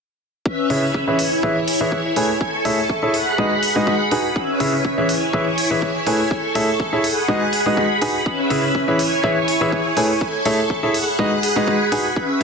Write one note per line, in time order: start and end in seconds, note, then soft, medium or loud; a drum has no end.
0.46 1.18 C#4 medium
0.46 1.18 B4 medium
0.46 1.18 E5 medium
0.46 kick loud
0.70 0.82 C#3 medium
0.70 0.82 E4 medium
0.70 0.82 G#4 medium
0.70 0.82 B4 medium
0.70 0.82 C#5 medium
0.70 0.82 E5 loud
0.70 open hi-hat loud
0.94 kick loud
1.07 1.17 E3 medium
1.07 1.17 E4 medium
1.07 1.17 G#4 medium
1.07 1.17 B4 medium
1.07 1.17 C#5 medium
1.07 1.17 E5 medium
1.19 2.40 E4 medium
1.19 2.39 C#5 medium
1.19 3.12 G#5 medium
1.19 open hi-hat loud
1.43 1.55 E3 medium
1.43 1.55 E4 medium
1.43 1.55 G#4 medium
1.43 1.55 B4 medium
1.43 1.55 C#5 medium
1.43 1.55 E5 loud
1.43 kick loud
1.68 open hi-hat loud
1.81 1.98 E3 medium
1.81 1.98 E4 medium
1.81 1.98 G#4 medium
1.81 1.98 B4 medium
1.81 1.98 C#5 medium
1.81 1.98 E5 medium
1.92 kick loud
2.16 2.29 A3 medium
2.16 2.29 E4 medium
2.16 2.29 G#4 medium
2.16 2.29 B4 medium
2.16 2.29 C#5 medium
2.16 2.29 G#5 medium
2.16 open hi-hat loud
2.41 3.13 A4 medium
2.41 3.13 C#6 medium
2.41 kick loud
2.65 2.77 A3 medium
2.65 2.77 E4 medium
2.65 2.77 G#4 medium
2.65 2.77 A4 medium
2.65 2.77 C#5 medium
2.65 2.77 E5 loud
2.65 open hi-hat loud
2.90 kick loud
3.03 3.13 E4 medium
3.03 3.13 G#4 medium
3.03 3.13 A4 medium
3.03 3.13 C#5 medium
3.03 3.13 E5 medium
3.14 4.35 G#4 medium
3.14 4.35 F#5 medium
3.14 4.35 B5 medium
3.14 open hi-hat loud
3.38 3.50 G#3 medium
3.38 3.50 D#4 medium
3.38 3.50 F#4 medium
3.38 3.50 G#4 medium
3.38 3.50 B4 medium
3.38 3.51 D#5 loud
3.38 kick loud
3.63 open hi-hat loud
3.76 3.94 G#3 medium
3.76 3.94 D#4 medium
3.76 3.94 F#4 medium
3.76 3.94 G#4 medium
3.76 3.94 B4 medium
3.76 3.94 D#5 medium
3.76 kick medium
3.87 kick loud
4.11 4.24 D#4 medium
4.11 4.24 F#4 medium
4.11 4.24 G#4 medium
4.11 4.24 B4 medium
4.11 4.24 G#5 medium
4.11 open hi-hat loud
4.36 5.08 C#4 medium
4.36 5.08 B4 medium
4.36 5.08 E5 medium
4.36 kick loud
4.60 4.72 C#3 medium
4.60 4.72 E4 medium
4.60 4.72 G#4 medium
4.60 4.72 B4 medium
4.60 4.72 C#5 medium
4.60 4.72 E5 loud
4.60 open hi-hat loud
4.85 kick loud
4.98 5.08 E3 medium
4.98 5.08 E4 medium
4.98 5.08 G#4 medium
4.98 5.08 B4 medium
4.98 5.08 C#5 medium
4.98 5.08 E5 medium
5.09 6.30 E4 medium
5.09 6.30 C#5 medium
5.09 7.02 G#5 medium
5.09 open hi-hat loud
5.33 5.46 E3 medium
5.33 5.46 E4 medium
5.33 5.46 G#4 medium
5.33 5.46 B4 medium
5.33 5.46 C#5 medium
5.33 5.46 E5 loud
5.33 kick loud
5.58 open hi-hat loud
5.71 5.89 E3 medium
5.71 5.89 E4 medium
5.71 5.89 G#4 medium
5.71 5.89 B4 medium
5.71 5.89 C#5 medium
5.71 5.89 E5 medium
5.82 kick loud
6.07 6.19 A3 medium
6.07 6.19 E4 medium
6.07 6.19 G#4 medium
6.07 6.19 B4 medium
6.07 6.19 C#5 medium
6.07 6.19 G#5 medium
6.07 open hi-hat loud
6.31 7.03 A4 medium
6.31 7.03 C#6 medium
6.31 kick loud
6.55 6.68 A3 medium
6.55 6.68 E4 medium
6.55 6.67 G#4 medium
6.55 6.68 A4 medium
6.55 6.68 C#5 medium
6.55 6.68 E5 loud
6.55 open hi-hat loud
6.80 kick loud
6.93 7.03 E4 medium
6.93 7.03 G#4 medium
6.93 7.03 A4 medium
6.93 7.03 C#5 medium
6.93 7.03 E5 medium
7.04 8.25 G#4 medium
7.04 8.25 F#5 medium
7.04 8.25 B5 medium
7.04 open hi-hat loud
7.28 7.41 G#3 medium
7.28 7.41 D#4 medium
7.28 7.41 F#4 medium
7.28 7.41 G#4 medium
7.28 7.41 B4 medium
7.28 7.41 D#5 loud
7.28 kick loud
7.53 open hi-hat loud
7.66 7.84 G#3 medium
7.66 7.84 D#4 medium
7.66 7.84 F#4 medium
7.66 7.84 G#4 medium
7.66 7.84 B4 medium
7.66 7.84 D#5 medium
7.66 kick medium
7.77 kick loud
8.02 8.14 D#4 medium
8.02 8.14 F#4 medium
8.02 8.14 G#4 medium
8.02 8.14 B4 medium
8.02 8.14 G#5 medium
8.02 open hi-hat loud
8.26 8.99 C#4 medium
8.26 8.99 B4 medium
8.26 8.99 E5 medium
8.26 kick loud
8.50 8.63 C#3 medium
8.50 8.63 E4 medium
8.50 8.63 G#4 medium
8.50 8.63 B4 medium
8.50 8.63 C#5 medium
8.50 8.63 E5 loud
8.50 open hi-hat loud
8.75 kick loud
8.88 8.98 E3 medium
8.88 8.98 E4 medium
8.88 8.98 G#4 medium
8.88 8.98 B4 medium
8.88 8.98 C#5 medium
8.88 8.98 E5 medium
8.99 10.20 E4 medium
8.99 10.20 C#5 medium
8.99 10.93 G#5 medium
8.99 open hi-hat loud
9.24 9.36 E3 medium
9.24 9.36 E4 medium
9.24 9.36 G#4 medium
9.24 9.36 B4 medium
9.24 9.36 C#5 medium
9.24 9.36 E5 loud
9.24 kick loud
9.48 open hi-hat loud
9.61 9.79 E3 medium
9.61 9.79 E4 medium
9.61 9.79 G#4 medium
9.61 9.79 B4 medium
9.61 9.79 C#5 medium
9.61 9.79 E5 medium
9.72 kick loud
9.97 10.09 A3 medium
9.97 10.09 E4 medium
9.97 10.09 G#4 medium
9.97 10.09 B4 medium
9.97 10.09 C#5 medium
9.97 10.09 G#5 medium
9.97 open hi-hat loud
10.21 10.94 A4 medium
10.21 10.94 C#6 medium
10.21 kick loud
10.45 10.58 A3 loud
10.45 10.58 E4 medium
10.45 10.58 G#4 medium
10.45 10.58 A4 medium
10.45 10.58 C#5 medium
10.45 10.58 E5 loud
10.45 open hi-hat loud
10.70 kick loud
10.83 10.93 E4 medium
10.83 10.93 G#4 medium
10.83 10.93 A4 medium
10.83 10.93 C#5 medium
10.83 10.93 E5 medium
10.94 12.15 G#4 medium
10.94 12.15 F#5 medium
10.94 12.15 B5 medium
10.94 open hi-hat loud
11.19 11.31 G#3 medium
11.19 11.31 D#4 medium
11.19 11.31 F#4 medium
11.19 11.31 G#4 medium
11.19 11.31 B4 medium
11.19 11.31 D#5 loud
11.19 kick loud
11.43 open hi-hat loud
11.56 11.74 G#3 medium
11.56 11.74 D#4 medium
11.56 11.74 F#4 medium
11.56 11.74 G#4 medium
11.56 11.74 B4 medium
11.56 11.74 D#5 medium
11.56 kick medium
11.68 kick loud
11.92 12.04 D#4 medium
11.92 12.04 F#4 medium
11.92 12.04 G#4 medium
11.92 12.04 B4 medium
11.92 12.04 G#5 medium
11.92 open hi-hat loud
12.16 12.43 C#4 medium
12.16 12.43 B4 medium
12.16 12.43 E5 medium
12.16 kick loud